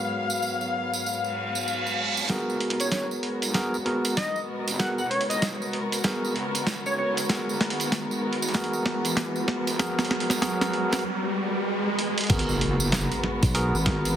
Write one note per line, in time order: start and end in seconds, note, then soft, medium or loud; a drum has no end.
0.00 2.26 G#2 medium
0.00 2.26 F#3 medium
0.00 2.26 B3 medium
0.00 2.27 B3 medium
0.00 2.27 F#4 medium
0.00 2.27 G#4 medium
0.00 2.27 A#4 medium
0.00 2.29 F5 medium
0.30 tambourine medium
0.42 tambourine medium
0.61 tambourine soft
0.94 tambourine medium
1.04 tambourine medium
1.04 reverse cymbal medium
1.24 tambourine soft
1.55 tambourine medium
1.68 tambourine medium
1.86 tambourine soft
2.17 tambourine medium
2.29 2.46 G#1 medium
2.29 12.25 G#3 medium
2.29 3.52 B3 medium
2.29 12.26 B3 medium
2.29 3.52 F#4 medium
2.29 12.26 F#4 medium
2.29 3.52 G#4 medium
2.29 3.52 A#4 medium
2.29 12.26 A#4 medium
2.29 kick medium
2.29 snare soft
2.29 closed hi-hat medium
2.29 tambourine medium
2.29 riser medium
2.49 3.08 F#1 loud
2.49 tambourine soft
2.60 closed hi-hat medium
2.70 closed hi-hat medium
2.70 closed hi-hat soft
2.80 2.88 C#5 medium
2.80 closed hi-hat medium
2.80 tambourine medium
2.81 closed hi-hat soft
2.92 3.04 C#5 medium
2.92 kick medium
2.92 snare soft
2.92 closed hi-hat medium
2.92 tambourine medium
3.11 tambourine soft
3.23 closed hi-hat soft
3.42 3.71 B1 medium
3.42 closed hi-hat soft
3.42 tambourine medium
3.54 3.75 B3 medium
3.54 3.75 F#4 medium
3.54 3.75 G#4 medium
3.54 3.75 A#4 loud
3.54 kick loud
3.54 snare medium
3.54 closed hi-hat medium
3.54 tambourine medium
3.74 4.33 G#1 medium
3.74 tambourine soft
3.85 4.15 B3 medium
3.85 4.15 F#4 medium
3.85 4.15 G#4 medium
3.85 4.15 A#4 medium
3.85 closed hi-hat soft
4.05 closed hi-hat medium
4.05 tambourine medium
4.17 4.38 D#5 loud
4.17 kick loud
4.17 snare medium
4.17 closed hi-hat medium
4.17 tambourine medium
4.36 tambourine soft
4.67 4.96 G#1 medium
4.67 closed hi-hat medium
4.67 tambourine medium
4.79 5.00 B3 medium
4.79 5.00 F#4 medium
4.79 5.00 G#4 medium
4.79 5.00 A#4 medium
4.79 4.92 F#5 medium
4.79 kick loud
4.79 snare medium
4.79 closed hi-hat medium
4.79 tambourine medium
4.98 5.58 F#1 loud
4.98 5.06 F#5 medium
4.98 tambourine soft
5.10 5.26 C#5 medium
5.10 closed hi-hat medium
5.21 closed hi-hat medium
5.29 5.45 D#5 medium
5.29 closed hi-hat medium
5.29 tambourine medium
5.42 kick medium
5.42 snare medium
5.42 closed hi-hat medium
5.42 tambourine medium
5.62 tambourine soft
5.73 closed hi-hat soft
5.92 closed hi-hat medium
5.92 tambourine medium
6.04 6.34 B3 medium
6.04 6.34 F#4 medium
6.04 6.34 G#4 medium
6.04 6.34 A#4 medium
6.04 kick medium
6.04 snare medium
6.04 closed hi-hat medium
6.04 tambourine medium
6.24 6.83 G#1 loud
6.24 tambourine soft
6.36 closed hi-hat soft
6.55 closed hi-hat medium
6.55 tambourine medium
6.67 kick loud
6.67 snare medium
6.67 closed hi-hat medium
6.67 tambourine medium
6.86 7.28 B1 loud
6.86 6.94 C#5 medium
6.86 tambourine soft
6.98 7.11 C#5 medium
7.17 closed hi-hat medium
7.17 tambourine medium
7.29 7.46 G#1 loud
7.29 8.52 B3 medium
7.29 8.52 F#4 medium
7.29 8.52 G#4 medium
7.29 8.52 A#4 medium
7.29 kick loud
7.29 snare medium
7.29 closed hi-hat medium
7.29 tambourine medium
7.48 8.08 F#1 loud
7.48 tambourine soft
7.61 snare medium
7.61 closed hi-hat medium
7.70 closed hi-hat medium
7.80 closed hi-hat soft
7.80 tambourine medium
7.92 kick loud
7.92 snare medium
7.92 closed hi-hat medium
7.92 tambourine medium
8.11 tambourine soft
8.33 closed hi-hat soft
8.42 8.71 B1 loud
8.42 closed hi-hat soft
8.42 tambourine medium
8.49 closed hi-hat soft
8.54 9.77 B3 medium
8.54 9.77 F#4 medium
8.54 9.77 G#4 medium
8.54 9.76 A#4 medium
8.54 kick loud
8.54 snare medium
8.54 closed hi-hat medium
8.54 tambourine medium
8.64 closed hi-hat soft
8.73 9.33 G#1 medium
8.73 tambourine soft
8.86 snare medium
8.86 closed hi-hat soft
9.05 closed hi-hat medium
9.05 tambourine medium
9.17 kick loud
9.17 snare medium
9.17 closed hi-hat medium
9.17 tambourine medium
9.36 tambourine soft
9.48 snare medium
9.67 9.96 G#1 loud
9.67 closed hi-hat medium
9.67 tambourine medium
9.79 10.40 B3 medium
9.79 10.40 F#4 medium
9.79 10.40 G#4 medium
9.79 10.40 A#4 medium
9.79 kick loud
9.79 snare medium
9.79 closed hi-hat medium
9.79 tambourine medium
9.99 10.58 F#1 loud
9.99 snare medium
9.99 tambourine soft
10.05 closed hi-hat soft
10.11 snare medium
10.20 closed hi-hat medium
10.30 snare medium
10.30 closed hi-hat medium
10.30 tambourine medium
10.42 11.03 B3 medium
10.42 11.03 F#4 medium
10.42 11.03 G#4 medium
10.42 11.03 A#4 medium
10.42 kick medium
10.42 snare loud
10.42 closed hi-hat medium
10.42 tambourine medium
10.61 11.05 D#2 loud
10.61 snare medium
10.61 tambourine soft
10.73 closed hi-hat soft
10.92 snare medium
10.92 closed hi-hat soft
10.92 tambourine medium
10.99 closed hi-hat soft
11.04 swell medium
11.99 closed hi-hat medium
12.18 closed hi-hat medium
12.21 closed hi-hat medium
12.24 closed hi-hat soft
12.27 14.16 G#3 medium
12.27 14.16 B3 medium
12.27 13.52 B3 medium
12.27 14.16 F#4 medium
12.27 13.52 F#4 medium
12.27 13.52 G#4 medium
12.27 14.16 A#4 medium
12.27 13.52 A#4 medium
12.27 closed hi-hat soft
12.27 impact medium
12.30 12.46 G#1 loud
12.30 kick loud
12.30 closed hi-hat medium
12.30 tambourine medium
12.30 crash loud
12.35 closed hi-hat soft
12.39 closed hi-hat medium
12.44 closed hi-hat soft
12.49 13.08 F#1 loud
12.49 tambourine soft
12.61 closed hi-hat medium
12.80 tambourine medium
12.92 snare loud
12.92 closed hi-hat medium
12.92 tambourine medium
13.11 closed hi-hat soft
13.11 tambourine soft
13.24 snare soft
13.42 13.71 B1 medium
13.42 kick loud
13.42 closed hi-hat medium
13.42 tambourine medium
13.55 13.76 B3 medium
13.55 13.75 F#4 medium
13.55 13.75 G#4 medium
13.55 13.75 A#4 loud
13.55 closed hi-hat medium
13.55 tambourine medium
13.74 14.16 G#1 medium
13.74 tambourine soft
13.86 14.15 B3 medium
13.86 14.15 F#4 medium
13.86 14.15 G#4 medium
13.86 14.15 A#4 medium
13.86 kick loud
13.86 snare medium
13.86 closed hi-hat medium
14.05 closed hi-hat soft
14.05 tambourine medium